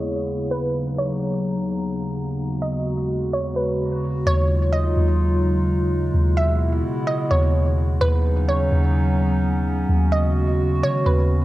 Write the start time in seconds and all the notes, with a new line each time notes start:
Already playing: D#2 C#3 G#3 B3 E4 G#4 C#5
0.51 F#3 D#4 B4 A#5
0.98 C#5
2.39 G#3 F#4
2.62 D#5
3.33 C#5
3.56 B4
4.26 D#2 C#3 F#3 G#3 D#4 F4 C#5
4.73 D#5
4.97 D#2
6.14 D#2 B2 B3 E4
6.37 E5
7.07 D#5
7.31 D#2 C#5
8.01 D#2 F#3 B3 C#4 D#4 B4
8.49 C#5
8.72 D#2
9.89 D#2 G#3 F#4
10.12 D#5
10.83 D#3 C#5
11.06 D#2 B4
11.41 E2